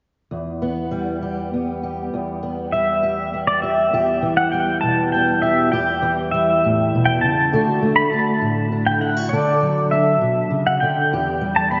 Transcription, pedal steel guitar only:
2.72 E5
3.47 D5
3.62 E5
4.37 F#5
4.52 G5
4.81 A5
5.12 G5
5.42 E5
5.72 G5
6.31 E5
7.05 G5
7.21 A5
7.96 B5
8.10 A5
8.87 G5
9.01 F#5
9.29 D5
9.91 E5
10.67 F#5
10.80 G5
11.56 A5
11.71 B5

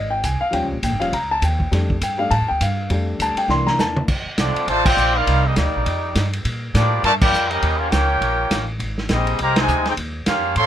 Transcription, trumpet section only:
4.39 C4 F4 A4 D5
4.69 F4 C5 D5 A5
4.87 F4 C5 D5 G5
5.16 D#4 A#4 D5 F5
5.46 A#3 D4 G4 D#5
5.57 A#3 D#4 G4 D5
6.76 A#3 F4 G4 D5
7.05 F4 A#4 D5 A5
7.23 F4 A#4 D5 G5
7.51 C#4 G4 A#4 D#5
7.79 C#4 G4 A#4 F5
7.91 F4 A#4 C#5 G5
9.13 C4 G4 G#4 D#5
9.42 G4 C5 D#5 A#5
9.60 D#4 G4 C5 G#5
9.89 D#4 G#4 C5 G5
10.27 C#4 G4 A#4 F5
10.58 A4 C#5 F5 C6

